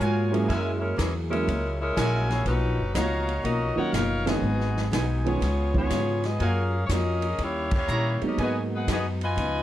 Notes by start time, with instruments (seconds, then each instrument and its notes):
Already playing: saxophone section A#3 F4 G#4 C#5
0.00 upright bass G#2, steel-string acoustic guitar F#3 A#3 F4 G#4, trumpet section F#4 A#4 F5 G#5, hi-hat pedal
0.31 saxophone section F3 A#3 C#4 G#4, grand piano F#3 G#3 A#3 C#4 E4, ride
0.48 upright bass F#2, steel-string acoustic guitar F#3 A#3 E4, saxophone section G#3 C#4 E4 A#4, trumpet section F#4 A#4 E5 G#5, kick, ride
0.52 steel-string acoustic guitar G#4
0.80 saxophone section G#3 C#4 E4 A#4
0.97 upright bass E2, saxophone section E3 A#3 C#4 G#4, steel-string acoustic guitar F#3 A#3 E4 G#4, kick, snare, hi-hat pedal, ride
1.30 grand piano F#3 G#3 A#3 C#4 E4, saxophone section G#3 C#4 E4 A#4, ride
1.47 upright bass C#2, steel-string acoustic guitar F#3 A#3 E4 G#4, kick, ride
1.81 saxophone section G#3 C#4 E4 A#4
1.96 upright bass A#1, steel-string acoustic guitar F#3 A#3 E4 G#4, trumpet section F#4 A#4 E5 G#5, kick, snare, hi-hat pedal, ride
2.29 saxophone section A#3 E4 G#4 C#5, snare, ride
2.46 upright bass B1, steel-string acoustic guitar B2 F3 A#3 D#4, saxophone section F#3 C#4 D#4 B4, kick, ride
2.62 upright bass A#1
2.78 upright bass F#1
2.94 upright bass C#2, steel-string acoustic guitar B2 F3 A#3 D#4, saxophone section A#3 D#4 F#4 C#5, trumpet section C#5 D#5 F5 A#5, kick, snare, hi-hat pedal, ride
3.29 ride
3.42 upright bass B1, steel-string acoustic guitar B2 F3 A#3 D#4, saxophone section C#4 F#4 A#4 D#5, kick, ride
3.76 grand piano D#3 F#3 A#3 C#4 F4, saxophone section D#4 A#4 C#5 F#5, muted upright bass stroke
3.92 upright bass F#1, steel-string acoustic guitar B2 F3 A#3 D#4, saxophone section D#4 A#4 C#5 F5, kick, snare, hi-hat pedal, ride
4.26 grand piano D#3 G#3 A#3 B3 C#4, saxophone section B3 F#4 G#4 D#5, snare, ride
4.41 upright bass G#1, steel-string acoustic guitar G#2 F#3 B3 D#4
4.60 snare
4.77 snare
4.91 upright bass B1, steel-string acoustic guitar G#2 F#3 B3 D#4, trumpet section F#4 B4 D#5 G#5, kick, snare, hi-hat pedal, ride
5.25 grand piano D#3 G#3 B3 C#4 F4, saxophone section B3 F4 G#4 C#5, ride
5.40 upright bass C#2, steel-string acoustic guitar C#3 G#3 B3 F4, kick, snare, ride
5.74 grand piano D#3 G#3 B3 C#4 F4, saxophone section B3 F4 G#4 C#5, kick
5.90 upright bass G#2, steel-string acoustic guitar C#3 G#3 B3 F4, kick, snare, hi-hat pedal, ride
6.23 saxophone section B3 F4 G#4 D#5, snare, ride
6.39 upright bass F#2, steel-string acoustic guitar F#3 A#3 F4 G#4, saxophone section C#4 G#4 A#4 F5, trumpet section F#4 A#4 F5 G#5, kick, ride
6.86 upright bass F2, saxophone section C#5, kick, snare, hi-hat pedal, ride
6.90 steel-string acoustic guitar F#3 A#3 F4 G#4, saxophone section C#4 G#4 A#4 D#5
7.22 ride
7.38 upright bass D#2, steel-string acoustic guitar D#3 G3 C#4, kick, ride
7.43 saxophone section A#3 E4 G4 C#5, steel-string acoustic guitar E4
7.71 kick, crash
7.75 saxophone section A#3 E4 G4 C#5
7.88 upright bass A#2, steel-string acoustic guitar D#3 G3, trumpet section E4 C#5 D#5 A#5, hi-hat pedal
7.92 steel-string acoustic guitar C#4 E4
8.21 grand piano F#3 G#3 A#3 B3 D#4, muted upright bass stroke, ride
8.26 saxophone section C#4 G4 A#4 D#5
8.38 upright bass G#2, steel-string acoustic guitar G#2 F#3 B3, trumpet section F#4 B4 D#5 G#5, kick, ride
8.42 saxophone section B3 F#4 G#4 D#5, steel-string acoustic guitar D#4
8.75 saxophone section D#4 G#4 B4 F#5
8.87 upright bass F#2, steel-string acoustic guitar G#2 F#3 B3 D#4, kick, snare, hi-hat pedal, ride
8.92 saxophone section B3 F#4 G#4 D#5
9.21 saxophone section F4 B4 D#5 G#5, ride
9.36 upright bass C#2, steel-string acoustic guitar C#3 F3 B3 D#4, kick, ride